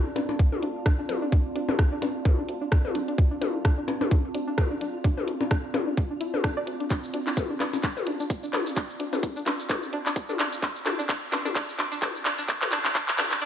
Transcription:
Already playing: ambient pad C4 F4 D5 A5, synth texture F4
0.16 fm bass G2, synth pluck D4, closed hi-hat, percussion blips
0.29 fm bass D2, synth pluck D4, percussion blips
0.39 kick
0.52 synth pluck D4, high tom
0.62 fm bass D2, synth pluck D4, closed hi-hat
0.86 synth pluck D4, kick, cross-stick
0.99 synth pluck D4
1.09 fm bass D1, closed hi-hat, high tom
1.22 synth pluck D4
1.32 fm bass D2, synth pluck D4, kick
1.55 fm bass D2, synth pluck D4, closed hi-hat
1.69 fm bass C2, synth pluck D4, high tom, percussion blips
1.79 kick, cross-stick, closed hi-hat
1.92 synth pluck D4
2.02 fm bass G2, synth pluck D4, closed hi-hat, percussion blips
2.15 fm bass D2
2.25 synth pluck D4, kick, high tom
2.38 synth pluck D4
2.49 fm bass D2, closed hi-hat
2.61 synth pluck D4
2.72 synth pluck D4, kick, cross-stick
2.85 high tom
2.95 fm bass D1, synth pluck D4, closed hi-hat
3.08 synth pluck D4, closed hi-hat
3.18 fm bass D2, kick
3.31 synth pluck D4
3.41 fm bass D2, synth pluck D4, closed hi-hat, high tom
3.55 fm bass C2
3.65 synth pluck D4, kick, cross-stick, closed hi-hat
3.78 synth pluck D4
3.88 fm bass G2, closed hi-hat, percussion blips
4.01 fm bass D2, synth pluck D4, high tom, percussion blips
4.11 synth pluck D4, kick
4.34 fm bass D2, synth pluck D4, closed hi-hat
4.48 synth pluck D4
4.58 kick, cross-stick, high tom
4.71 synth pluck D4
4.81 fm bass D1, synth pluck D4, closed hi-hat
5.04 fm bass D2, synth pluck D4, kick
5.17 synth pluck D4, high tom
5.27 fm bass D2, closed hi-hat
5.41 fm bass C2, synth pluck D4, percussion blips
5.51 synth pluck D4, kick, cross-stick, closed hi-hat
5.74 fm bass G2, synth pluck D4, closed hi-hat, high tom, percussion blips
5.87 fm bass D2, synth pluck D4
5.97 kick
6.11 synth pluck D4
6.21 synth pluck E4, closed hi-hat
6.34 synth pluck D4, high tom
6.44 synth pluck D4, kick, cross-stick
6.57 fm bass D2, synth pluck D5
6.67 fm bass D2, closed hi-hat
6.80 synth pluck D4, closed hi-hat
6.90 fm bass D2, synth pluck D4, kick, clap, shaker
7.04 shaker
7.14 fm bass D2, synth pluck D4, closed hi-hat
7.27 fm bass C2, synth pluck D4, clap, shaker
7.37 kick, closed hi-hat, high tom, shaker
7.50 synth pluck D4
7.60 fm bass G2, synth pluck D4, clap, closed hi-hat, percussion blips
7.73 fm bass D2, percussion blips, shaker
7.83 synth pluck D4, kick, clap, shaker
7.97 high tom, shaker
8.07 fm bass D2, synth pluck D4, closed hi-hat
8.20 synth pluck D4, shaker
8.30 kick, shaker
8.43 synth pluck D4, shaker
8.53 fm bass D1, synth pluck D4, clap, closed hi-hat, high tom
8.66 shaker
8.77 fm bass D2, synth pluck D4, kick, clap, shaker
8.90 shaker
9.00 fm bass D2, synth pluck D4, closed hi-hat
9.13 fm bass C2, synth pluck D4, high tom, percussion blips, shaker
9.23 kick, closed hi-hat, shaker
9.36 synth pluck D4, shaker
9.46 fm bass G2, synth pluck D4, clap, closed hi-hat, percussion blips
9.59 fm bass D2, shaker
9.70 synth pluck D4, kick, clap, high tom, shaker
9.83 shaker
9.93 fm bass D2, synth pluck D4, closed hi-hat
10.06 synth pluck D4, clap, shaker
10.16 kick, shaker
10.29 synth pluck D4, high tom, shaker
10.39 fm bass D1, synth pluck D4, clap, closed hi-hat
10.53 closed hi-hat, shaker
10.62 fm bass D2, synth pluck D4, kick, clap, shaker
10.76 shaker
10.86 fm bass D2, synth pluck D4, clap, closed hi-hat, high tom
10.99 fm bass C2, synth pluck D4, shaker
11.09 synth pluck D4, kick, clap, closed hi-hat, shaker
11.32 fm bass G2, synth pluck D4, clap, closed hi-hat, percussion blips
11.45 fm bass D2, synth pluck D4, high tom, percussion blips, shaker
11.55 synth pluck D4, kick, clap, shaker
11.69 shaker
11.79 fm bass D2, synth pluck D4, clap, closed hi-hat
11.92 synth pluck D4, shaker
12.02 synth pluck D4, kick, clap, high tom, shaker
12.15 shaker
12.25 fm bass D1, synth pluck D4, clap, closed hi-hat
12.38 synth pluck D4, shaker
12.48 fm bass D2, synth pluck D4, kick, clap, shaker
12.62 clap, high tom, shaker
12.72 fm bass D2, synth pluck D4, clap, closed hi-hat
12.85 fm bass C2, clap, percussion blips, shaker
12.95 synth pluck D4, kick, clap, closed hi-hat, shaker
13.08 clap, shaker
13.18 fm bass G2, synth pluck D4, clap, closed hi-hat, high tom, percussion blips
13.31 fm bass D2, clap, percussion blips, shaker
13.42 synth pluck D4

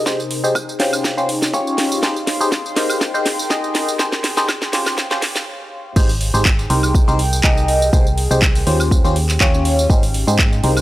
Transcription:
Already playing: ambient pad C3 D#4 A#4 C5
0.06 fm electric piano D#4 G4 G#4 C5, kick, snare, tambourine
0.16 ambient pad G#4, tambourine
0.31 open hi-hat
0.44 fm electric piano D#4 G4 G#4 C5, tambourine
0.55 kick, tambourine, high woodblock
0.69 tambourine
0.80 fm electric piano C#4 F4 G4 C5, snare, open hi-hat
0.93 tambourine, high woodblock
1.04 kick, snare, tambourine
1.14 fm electric piano C#4 F4 G4 C5, ambient pad C#5, tambourine
1.21 ambient pad G4 C6
1.28 ambient pad F5, open hi-hat
1.42 snare, tambourine
1.54 fm electric piano C#4 F4 G4 C#5, kick, tambourine
1.67 tambourine
1.78 snare, open hi-hat
1.92 tambourine
2.03 fm electric piano D#4 G4 G#4 C5, kick, snare, tambourine
2.16 ambient pad G#4, tambourine
2.27 snare, open hi-hat
2.40 fm electric piano D#4 G4 G#4 C5, ambient pad G5, tambourine
2.52 kick, snare, tambourine
2.66 tambourine
2.76 fm electric piano D#4 G4 A#4 C5, snare, open hi-hat
2.90 tambourine, high woodblock
3.01 kick, snare, tambourine
3.13 fm electric piano D#4 G4 A#4 C5, ambient pad A#4, tambourine
3.26 snare, open hi-hat
3.39 tambourine
3.50 fm electric piano D#4 G4 G#4 D#5, kick, snare, tambourine
3.64 tambourine
3.75 ambient pad C3, snare, open hi-hat
3.88 tambourine
3.93 ambient pad G#4
3.99 fm electric piano D#4 G4 G#4 C5, kick, snare, tambourine
4.12 snare, tambourine
4.24 snare, open hi-hat
4.37 fm electric piano D#4 G4 G#4 C5, snare, tambourine
4.49 kick, snare, tambourine, high woodblock
4.62 snare, tambourine
4.73 fm electric piano C#4 F4 G4 C5, snare, open hi-hat
4.86 snare, tambourine, high woodblock
4.98 kick, snare, tambourine
5.11 fm electric piano C#4 F4 G4 C5, snare, tambourine
5.22 snare, open hi-hat
5.36 snare, tambourine
5.96 fm bass G#1, fm electric piano D#4 G4 G#4 C5, kick, crash, tambourine
6.06 ambient pad G#4, open hi-hat
6.10 tambourine
6.21 ambient pad G5, open hi-hat
6.34 fm bass G#1, fm electric piano D#4 G4 G#4 C5, tambourine
6.45 kick, clap, tambourine
6.59 tambourine
6.70 fm bass C2, fm electric piano D#4 G4 A#4 C5, open hi-hat
6.83 tambourine, high woodblock
6.95 kick, tambourine
7.06 fm bass C2, fm electric piano D#4 G4 A#4 C5, ambient pad A#4, tambourine
7.19 open hi-hat
7.33 tambourine
7.44 fm bass C2, fm electric piano D#4 G4 G#4 D#5, kick, clap, tambourine
7.57 tambourine
7.68 open hi-hat
7.73 ambient pad G#4
7.82 tambourine
7.93 fm bass C2, fm electric piano D#4 G4 G#4 C5, kick, tambourine
8.07 tambourine
8.18 open hi-hat
8.31 fm bass C2, fm electric piano D#4 G4 G#4 C5, tambourine
8.42 kick, clap, tambourine
8.55 open hi-hat, tambourine
8.67 fm bass D#2, fm electric piano C#4 F4 G4 C5, open hi-hat
8.80 tambourine, high woodblock
8.91 ambient pad C#4, kick, tambourine
9.04 fm bass D#2, fm electric piano C#4 F4 G4 C5, ambient pad G4, tambourine
9.16 open hi-hat
9.20 ambient pad F5
9.29 clap, tambourine
9.41 fm bass D#2, fm electric piano C#4 F4 G4 C#5, kick, clap, tambourine
9.54 tambourine
9.65 open hi-hat
9.79 tambourine
9.90 fm bass G#1, fm electric piano D#4 G4 G#4 C5, ambient pad D#4, kick, tambourine
9.95 ambient pad G#4 G5
10.03 open hi-hat, tambourine
10.14 open hi-hat
10.27 fm bass G#2, fm electric piano D#4 G4 G#4 C5, tambourine
10.39 kick, clap, tambourine
10.53 tambourine
10.64 fm bass C2, fm electric piano D#4 G4 A#4 C5, open hi-hat
10.77 tambourine, high woodblock

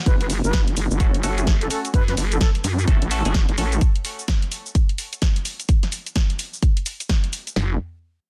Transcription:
0.06 wobble bass F#1, flute B4, kick, closed hi-hat, shaker
0.21 flute B4, closed hi-hat
0.30 open hi-hat, shaker
0.44 wobble bass F#1, flute B4, shaker
0.53 kick, snare, closed hi-hat, shaker
0.68 closed hi-hat
0.77 wobble bass F#1, open hi-hat, shaker
0.91 wobble bass F#1, shaker
1.00 synth stab A3 C#4 F#4 A4, kick, closed hi-hat, shaker
1.14 closed hi-hat
1.23 wobble bass F#1, synth stab A3 C#4 F#4 A4, open hi-hat, shaker
1.38 synth stab A3 C#4 F#4 G#4, closed hi-hat, shaker
1.47 kick, snare, closed hi-hat, shaker
1.61 flute A4, closed hi-hat
1.70 synth stab A3 C#4 F#4 A4, flute A4, open hi-hat, shaker
1.85 closed hi-hat, shaker
1.94 wobble bass F#2, flute B4, kick, closed hi-hat, shaker
2.08 flute B4, snare, closed hi-hat
2.17 wobble bass F#1, open hi-hat, shaker
2.32 flute A4, closed hi-hat, shaker
2.41 flute A4, kick, snare, closed hi-hat, shaker
2.55 closed hi-hat
2.64 wobble bass F#2, open hi-hat, shaker
2.79 shaker
2.88 wobble bass F#1, synth stab A3 C#4 F#4 A4, kick, closed hi-hat, shaker
3.02 wobble bass A1, closed hi-hat
3.11 synth stab A3 C#4 F#4 A4, open hi-hat, shaker
3.25 wobble bass F#1, synth stab A3 C#4 F#4 G#4, closed hi-hat, shaker
3.34 kick, snare, closed hi-hat, shaker
3.49 wobble bass F#1, closed hi-hat
3.58 wobble bass A1, synth stab A3 C#4 F#4 A4, open hi-hat, shaker
3.72 closed hi-hat, shaker
3.81 kick, closed hi-hat, shaker
3.96 closed hi-hat
4.05 open hi-hat, shaker
4.19 shaker
4.28 kick, snare, closed hi-hat, shaker
4.42 closed hi-hat
4.52 open hi-hat, shaker
4.66 shaker
4.75 kick, closed hi-hat, shaker
4.89 closed hi-hat
4.98 open hi-hat, shaker
5.13 closed hi-hat, shaker
5.22 kick, snare, closed hi-hat, shaker
5.36 closed hi-hat
5.45 open hi-hat, shaker
5.60 closed hi-hat, shaker
5.69 kick, closed hi-hat, shaker
5.83 snare, closed hi-hat
5.92 open hi-hat, shaker
6.06 closed hi-hat, shaker
6.16 kick, snare, closed hi-hat, shaker
6.30 closed hi-hat
6.39 open hi-hat, shaker
6.53 shaker
6.63 kick, closed hi-hat, shaker
6.77 closed hi-hat
6.86 open hi-hat, shaker
7.00 closed hi-hat, shaker
7.09 kick, snare, closed hi-hat, shaker
7.24 closed hi-hat
7.33 open hi-hat, shaker
7.47 closed hi-hat, shaker
7.56 wobble bass F#1, snare, floor tom

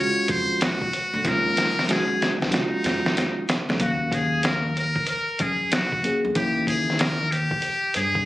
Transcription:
Already playing: tine electric piano G#3 F#4
0.00 tine electric piano C#4 F4, muted trumpet C#5
0.28 upright bass F2, muted trumpet C5, kick, closed hi-hat
0.61 muted trumpet F#4, snare, closed hi-hat
0.82 kick
0.93 closed hi-hat
1.14 upright bass D2
1.23 upright bass D#2, tine electric piano F#3 G#3 C#4 F4, kick, snare, closed hi-hat
1.28 muted trumpet A#4
1.57 snare, closed hi-hat
1.79 snare
1.87 tine electric piano F#3 G#3 C#4 F#4, snare, closed hi-hat
1.92 muted trumpet G#4
2.22 snare, closed hi-hat
2.41 upright bass C#2, snare
2.51 tine electric piano G#3 C#4 F4 F#4, muted trumpet D#4, snare, closed hi-hat
2.84 upright bass F2, snare, closed hi-hat
3.06 snare
3.17 snare, closed hi-hat
3.49 snare, closed hi-hat
3.69 upright bass D2, snare
3.79 upright bass D#2, tine electric piano F#3 A#3 C#4 F5, muted trumpet F#4, kick, closed hi-hat
4.12 muted trumpet G#4, kick, closed hi-hat
4.43 muted trumpet A#4, snare, closed hi-hat
4.77 muted trumpet A#4, closed hi-hat
4.96 kick
5.07 muted trumpet A#4, closed hi-hat
5.39 upright bass F#2, muted trumpet G#4, kick, closed hi-hat
5.72 muted trumpet F#4, snare, closed hi-hat
5.92 kick
6.02 tine electric piano F#3 A#3 C#4 G#4, closed hi-hat
6.25 upright bass D2
6.35 upright bass D#2, tine electric piano E3 A#3 C#4 E4, muted trumpet G4, kick, closed hi-hat
6.67 muted trumpet G#4, kick, closed hi-hat
6.90 snare
6.99 muted trumpet A#4, snare, closed hi-hat
7.31 muted trumpet G4, closed hi-hat
7.51 kick
7.62 closed hi-hat
7.94 upright bass G2, muted trumpet G#4, closed hi-hat
8.15 kick

